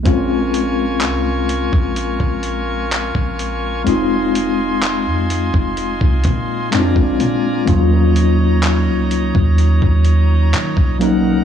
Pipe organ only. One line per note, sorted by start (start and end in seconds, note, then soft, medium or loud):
0.05 6.68 F4 medium
0.05 3.82 A#4 medium
0.05 3.82 G#5 medium
0.05 3.82 C#6 medium
3.87 6.69 D#5 medium
3.87 7.64 G#5 medium
3.87 6.70 C6 medium
6.72 7.66 F4 medium
6.72 7.66 D5 medium
6.72 10.97 A#5 medium
7.68 11.44 D#4 medium
7.68 10.98 C#5 medium
7.68 10.98 D#5 medium
11.01 11.44 A#4 medium
11.01 11.44 F#5 medium
11.01 11.44 A#5 medium